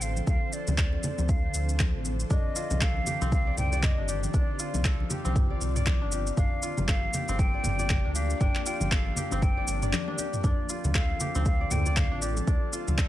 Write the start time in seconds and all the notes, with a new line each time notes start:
Already playing: A1 D3 F3 C4 A4 C5
0.01 F5, shaker
0.17 high conga, shaker
0.27 D2 F5, kick, shaker
0.53 D5, shaker
0.67 D2, high conga, low conga, shaker
0.78 D5, kick, clap, shaker
0.93 high conga
1.03 low conga, shaker
1.18 D2, high conga, shaker
1.29 F5, kick, shaker
1.54 D2, shaker
1.69 shaker
1.79 kick, clap, high conga, shaker
1.94 A1
2.05 high conga, shaker
2.20 shaker
2.30 C2 D#3 D4 G4 D#5, kick, mid tom, shaker
2.56 F4, shaker
2.70 C2, high conga, low conga, shaker
2.81 A4 F5, kick, clap, shaker
2.97 high conga
3.07 G4, low conga, shaker
3.21 C2 C4, high conga, shaker
3.32 F5, kick, high conga, shaker
3.47 D5
3.57 C2 G5, mid tom, low conga, shaker
3.72 D5, shaker
3.83 D#5, kick, clap, mid tom, low conga, shaker
3.98 G1 D4
4.08 G4 D5, shaker
4.23 high conga, shaker
4.34 C2 D4 F4, kick, shaker
4.59 F4, shaker
4.74 C2, high conga, low conga, shaker
4.85 A4, kick, clap, shaker
5.00 high conga
5.10 G4, low conga, shaker
5.25 C2 C4, high conga, shaker
5.36 kick, mid tom, shaker
5.50 D5
5.61 C2, shaker
5.76 D5, mid tom, shaker
5.86 kick, clap, high conga, shaker
6.01 G1 D4
6.12 G4, high conga, shaker
6.27 shaker
6.37 G1 F3 A#3 D4 G4 F5, kick, mid tom, shaker
6.62 F4, shaker
6.77 G1, high conga, low conga, shaker
6.88 A4 F5, kick, clap, shaker
7.03 high conga
7.13 G4, low conga, shaker
7.28 G1 C4, high conga, shaker
7.39 G5, kick, high conga, shaker
7.54 D5
7.64 G1, mid tom, low conga, shaker
7.79 D5, shaker
7.90 kick, clap, mid tom, low conga, shaker
8.04 D2 D4
8.15 G4 F5, shaker
8.30 high conga, shaker
8.40 G1 D4 G5, kick, mid tom, shaker
8.55 clap
8.65 F4 G5, shaker
8.80 G1, high conga, low conga, shaker
8.91 A4 F5, kick, clap, shaker
9.06 high conga
9.16 G4, low conga, shaker
9.31 G1 C4, high conga, shaker
9.42 G5, kick, mid tom, swell, shaker
9.57 D5
9.67 G1, shaker
9.82 D5, mid tom, shaker
9.93 clap, high tom, high conga, shaker
10.08 D4, high tom
10.18 G4, high conga, shaker
10.33 mid tom, shaker
10.44 D2 D3 A3 C4 D4 F4 A4 D5, kick, mid tom, shaker
10.69 F4, shaker
10.84 D2, high conga, low conga, shaker
10.95 A4 F5, kick, clap, shaker
11.10 high conga
11.20 G4, low conga, shaker
11.35 D2 C4, high conga, shaker
11.45 F5, kick, high conga, shaker
11.61 D5
11.71 D2 G5, mid tom, low conga, shaker
11.86 D5, shaker
11.97 F5, kick, clap, mid tom, low conga, shaker
12.11 A1 D4
12.22 G4 D5, shaker
12.37 high conga, shaker
12.47 D2 D4, kick, shaker
12.73 F4, shaker
12.87 D2, high conga, low conga, shaker
12.98 A4, kick, clap, shaker